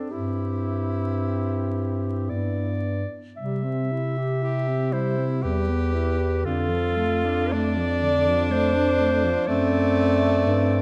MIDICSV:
0, 0, Header, 1, 5, 480
1, 0, Start_track
1, 0, Key_signature, 0, "major"
1, 0, Tempo, 1043478
1, 54, Time_signature, 3, 2, 24, 8
1, 536, Tempo, 1160542
1, 1016, Tempo, 1067616
1, 1496, Tempo, 1018676
1, 2936, Tempo, 1069519
1, 3416, Tempo, 988468
1, 5018, End_track
2, 0, Start_track
2, 0, Title_t, "Clarinet"
2, 0, Program_c, 0, 71
2, 46, Note_on_c, 0, 67, 54
2, 1004, Note_on_c, 0, 74, 57
2, 1010, Note_off_c, 0, 67, 0
2, 1408, Note_off_c, 0, 74, 0
2, 1485, Note_on_c, 0, 76, 69
2, 2218, Note_on_c, 0, 72, 70
2, 2225, Note_off_c, 0, 76, 0
2, 2374, Note_off_c, 0, 72, 0
2, 2461, Note_on_c, 0, 71, 64
2, 2936, Note_on_c, 0, 69, 76
2, 2943, Note_off_c, 0, 71, 0
2, 3416, Note_on_c, 0, 74, 95
2, 3423, Note_off_c, 0, 69, 0
2, 3901, Note_on_c, 0, 72, 91
2, 3908, Note_off_c, 0, 74, 0
2, 4366, Note_on_c, 0, 74, 97
2, 4373, Note_off_c, 0, 72, 0
2, 5018, Note_off_c, 0, 74, 0
2, 5018, End_track
3, 0, Start_track
3, 0, Title_t, "Tenor saxophone"
3, 0, Program_c, 1, 66
3, 0, Note_on_c, 1, 62, 38
3, 54, Note_on_c, 1, 64, 47
3, 61, Note_off_c, 1, 62, 0
3, 1260, Note_off_c, 1, 64, 0
3, 1978, Note_on_c, 1, 67, 54
3, 2217, Note_on_c, 1, 64, 51
3, 2224, Note_off_c, 1, 67, 0
3, 2453, Note_on_c, 1, 67, 62
3, 2460, Note_off_c, 1, 64, 0
3, 2932, Note_off_c, 1, 67, 0
3, 2935, Note_on_c, 1, 65, 64
3, 3416, Note_on_c, 1, 62, 85
3, 3423, Note_off_c, 1, 65, 0
3, 4362, Note_off_c, 1, 62, 0
3, 4365, Note_on_c, 1, 57, 83
3, 5018, Note_off_c, 1, 57, 0
3, 5018, End_track
4, 0, Start_track
4, 0, Title_t, "Alto saxophone"
4, 0, Program_c, 2, 65
4, 0, Note_on_c, 2, 60, 42
4, 50, Note_off_c, 2, 60, 0
4, 53, Note_on_c, 2, 60, 42
4, 1010, Note_on_c, 2, 59, 37
4, 1016, Note_off_c, 2, 60, 0
4, 1345, Note_off_c, 2, 59, 0
4, 1490, Note_on_c, 2, 55, 44
4, 1609, Note_on_c, 2, 60, 44
4, 1616, Note_off_c, 2, 55, 0
4, 1743, Note_on_c, 2, 64, 45
4, 1750, Note_off_c, 2, 60, 0
4, 1864, Note_on_c, 2, 67, 43
4, 1871, Note_off_c, 2, 64, 0
4, 1981, Note_on_c, 2, 64, 42
4, 1988, Note_off_c, 2, 67, 0
4, 2101, Note_on_c, 2, 60, 41
4, 2108, Note_off_c, 2, 64, 0
4, 2216, Note_on_c, 2, 55, 46
4, 2223, Note_off_c, 2, 60, 0
4, 2334, Note_on_c, 2, 60, 44
4, 2341, Note_off_c, 2, 55, 0
4, 2452, Note_off_c, 2, 60, 0
4, 2455, Note_on_c, 2, 55, 50
4, 2579, Note_on_c, 2, 59, 46
4, 2586, Note_off_c, 2, 55, 0
4, 2694, Note_on_c, 2, 64, 47
4, 2701, Note_off_c, 2, 59, 0
4, 2811, Note_on_c, 2, 67, 45
4, 2818, Note_off_c, 2, 64, 0
4, 2927, Note_off_c, 2, 67, 0
4, 2930, Note_on_c, 2, 50, 55
4, 3045, Note_on_c, 2, 53, 54
4, 3052, Note_off_c, 2, 50, 0
4, 3166, Note_on_c, 2, 57, 52
4, 3173, Note_off_c, 2, 53, 0
4, 3291, Note_on_c, 2, 62, 58
4, 3297, Note_off_c, 2, 57, 0
4, 3418, Note_on_c, 2, 57, 61
4, 3426, Note_off_c, 2, 62, 0
4, 3539, Note_on_c, 2, 53, 54
4, 3546, Note_off_c, 2, 57, 0
4, 3660, Note_on_c, 2, 50, 54
4, 3667, Note_off_c, 2, 53, 0
4, 3782, Note_on_c, 2, 53, 62
4, 3789, Note_off_c, 2, 50, 0
4, 3894, Note_on_c, 2, 57, 61
4, 3901, Note_off_c, 2, 53, 0
4, 4013, Note_on_c, 2, 62, 64
4, 4020, Note_off_c, 2, 57, 0
4, 4136, Note_on_c, 2, 57, 59
4, 4144, Note_off_c, 2, 62, 0
4, 4252, Note_on_c, 2, 53, 61
4, 4259, Note_off_c, 2, 57, 0
4, 4370, Note_off_c, 2, 53, 0
4, 4373, Note_on_c, 2, 60, 73
4, 4832, Note_off_c, 2, 60, 0
4, 4848, Note_on_c, 2, 60, 71
4, 5018, Note_off_c, 2, 60, 0
4, 5018, End_track
5, 0, Start_track
5, 0, Title_t, "Bass clarinet"
5, 0, Program_c, 3, 71
5, 54, Note_on_c, 3, 43, 45
5, 999, Note_off_c, 3, 43, 0
5, 1011, Note_on_c, 3, 43, 38
5, 1338, Note_off_c, 3, 43, 0
5, 1495, Note_on_c, 3, 48, 53
5, 2462, Note_on_c, 3, 40, 55
5, 2469, Note_off_c, 3, 48, 0
5, 2936, Note_off_c, 3, 40, 0
5, 2939, Note_on_c, 3, 41, 64
5, 4293, Note_off_c, 3, 41, 0
5, 4376, Note_on_c, 3, 42, 79
5, 4849, Note_on_c, 3, 43, 69
5, 4856, Note_off_c, 3, 42, 0
5, 5018, Note_off_c, 3, 43, 0
5, 5018, End_track
0, 0, End_of_file